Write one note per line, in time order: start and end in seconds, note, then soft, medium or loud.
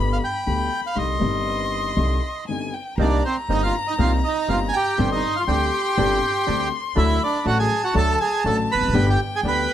0.00 0.18 G1 medium
0.00 0.18 G2 medium
0.00 0.18 D3 medium
0.00 0.18 G3 medium
0.00 0.18 B3 soft
0.00 0.18 G4 medium
0.00 0.45 B5 medium
0.13 0.17 F5 medium
0.24 0.81 G5 medium
0.46 0.67 D2 soft
0.46 0.67 D3 soft
0.46 0.67 G3 soft
0.46 0.67 B3 soft
0.46 0.67 G4 soft
0.46 0.98 B5 medium
0.87 0.98 F5 medium
0.95 1.17 C2 soft
0.95 1.17 C2 medium
0.95 1.17 C3 soft
0.95 1.17 D3 soft
0.95 1.17 G3 soft
0.95 1.17 C4 soft
0.95 1.17 D#4 soft
0.95 2.44 D#5 medium
0.95 2.47 C6 medium
1.18 1.92 G1 medium
1.18 1.93 G1 medium
1.18 1.92 G2 medium
1.18 1.91 D#3 medium
1.18 1.92 G3 medium
1.18 1.93 C4 medium
1.23 1.93 D#4 medium
1.96 2.18 C2 medium
1.96 2.18 C3 medium
1.96 2.18 D3 soft
1.96 2.18 G3 soft
1.96 2.18 C4 soft
1.96 2.18 D#4 medium
2.47 2.70 G1 soft
2.47 2.70 G2 soft
2.47 2.70 D3 soft
2.47 2.69 G3 soft
2.47 2.70 C4 soft
2.47 2.70 D#4 soft
2.47 2.75 G#5 medium
2.74 2.98 G5 medium
2.98 3.19 C2 medium
2.98 3.20 C2 medium
2.98 3.21 C3 medium
2.98 3.20 G3 medium
2.98 3.20 A#3 medium
2.98 3.20 C4 medium
2.98 3.23 D4 medium
2.98 3.20 D#4 medium
2.98 3.21 D#4 medium
2.98 3.23 D5 medium
2.98 4.99 A#5 medium
3.25 3.37 C4 soft
3.25 3.36 C5 medium
3.49 3.70 G1 medium
3.49 3.70 G1 soft
3.49 3.70 G2 medium
3.49 3.70 C3 soft
3.49 3.70 G3 soft
3.49 3.70 A#3 soft
3.49 3.70 C4 soft
3.49 3.70 D#4 soft
3.49 3.62 D#5 medium
3.53 3.63 D#4 medium
3.63 3.75 F4 medium
3.63 3.74 F5 medium
3.88 3.95 D#4 medium
3.88 3.93 D#5 medium
3.98 4.20 C2 medium
3.98 4.20 C3 medium
3.98 4.20 G3 medium
3.98 4.20 A#3 medium
3.98 4.20 C4 medium
3.98 4.20 D#4 medium
3.98 4.21 D#4 medium
3.98 4.12 F4 medium
3.98 4.11 F5 medium
4.24 4.49 D#4 medium
4.24 4.47 D#5 medium
4.48 4.69 G1 soft
4.48 4.70 G1 medium
4.48 4.70 G2 soft
4.48 4.70 C3 soft
4.48 4.70 G3 soft
4.48 4.69 A#3 soft
4.48 4.70 A#3 soft
4.48 4.70 C4 soft
4.48 4.70 D#4 soft
4.48 4.70 D#4 medium
4.48 4.57 F5 medium
4.52 4.60 F4 medium
4.69 4.75 G#5 medium
4.73 5.10 G4 medium
4.73 5.08 G5 medium
4.97 5.20 G1 medium
4.97 5.20 G2 medium
4.97 5.19 D3 medium
4.97 5.19 G3 medium
4.97 5.20 G3 medium
4.97 5.19 C4 medium
4.97 5.20 D4 medium
4.97 5.20 G4 medium
4.97 6.98 C6 medium
5.12 5.36 D#4 medium
5.12 5.35 D#5 medium
5.36 5.44 F4 medium
5.36 5.42 F5 medium
5.47 5.69 D2 medium
5.47 5.69 D2 soft
5.47 5.69 D3 soft
5.47 5.69 G3 soft
5.47 5.69 C4 soft
5.47 5.69 D4 medium
5.47 5.69 G4 soft
5.47 6.69 G4 medium
5.47 6.67 G5 medium
5.97 6.19 G1 medium
5.97 6.19 G2 medium
5.97 6.19 D3 medium
5.97 6.18 G3 medium
5.97 6.19 G3 medium
5.97 6.18 C4 medium
5.97 6.19 C4 medium
5.97 6.19 D4 medium
5.97 6.19 G4 medium
6.46 6.68 D2 soft
6.46 6.68 D2 medium
6.46 6.68 D3 soft
6.46 6.67 G3 soft
6.46 6.68 G3 soft
6.46 6.67 C4 soft
6.46 6.68 C4 soft
6.46 6.67 D4 medium
6.46 6.68 G4 soft
6.95 7.17 D2 medium
6.95 7.17 D3 medium
6.95 7.16 F#3 medium
6.95 7.17 F#3 medium
6.95 7.16 A3 medium
6.95 7.17 A3 medium
6.95 7.17 D4 medium
6.95 7.17 F#4 medium
6.95 7.23 E5 medium
6.95 7.48 B5 medium
6.99 7.21 E4 medium
7.23 7.46 D4 medium
7.23 7.45 D5 medium
7.44 7.66 A1 medium
7.44 7.66 A2 medium
7.44 7.66 D3 soft
7.44 7.66 F#3 soft
7.44 7.66 A3 soft
7.44 7.66 D4 medium
7.44 7.67 F#4 soft
7.44 7.58 F#4 medium
7.44 7.58 F#5 medium
7.44 8.96 A5 medium
7.59 7.82 G#4 medium
7.59 7.84 G#5 medium
7.84 7.95 F#4 medium
7.84 7.95 F#5 medium
7.94 8.15 D2 medium
7.94 8.16 D2 medium
7.94 8.15 D3 medium
7.94 8.15 F#3 medium
7.94 8.15 A3 medium
7.94 8.15 D4 medium
7.94 8.15 F#4 medium
7.94 8.19 A4 medium
7.94 8.19 A5 medium
8.21 8.44 G#4 medium
8.21 8.43 G#5 medium
8.44 8.65 A1 medium
8.44 8.66 A1 soft
8.44 8.66 A2 medium
8.44 8.66 D3 soft
8.44 8.65 F#3 soft
8.44 8.66 F#3 soft
8.44 8.65 A3 soft
8.44 8.66 A3 soft
8.44 8.65 D4 medium
8.44 8.66 F#4 soft
8.44 8.57 A4 medium
8.44 8.57 A5 medium
8.72 8.81 E1 soft
8.72 9.06 B4 medium
8.72 9.09 B5 medium
8.77 8.82 E2 soft
8.81 8.87 F1 medium
8.81 8.88 F2 medium
8.88 8.93 F#1 medium
8.88 8.95 F#2 medium
8.93 9.15 G1 medium
8.93 9.15 G2 medium
8.93 9.15 D3 medium
8.93 9.15 G3 medium
8.93 9.15 B3 medium
8.93 9.15 D4 medium
8.93 9.15 G4 medium
8.93 9.73 G5 medium
9.09 9.20 G4 medium
9.09 9.20 G5 medium
9.36 9.41 G#4 medium
9.36 9.41 G#5 medium
9.43 9.65 D2 medium
9.43 9.65 D2 soft
9.43 9.65 D3 medium
9.43 9.65 G3 soft
9.43 9.65 B3 soft
9.43 9.66 B3 soft
9.43 9.65 D4 soft
9.43 9.65 G4 soft
9.48 9.73 B4 medium
9.48 9.73 B5 medium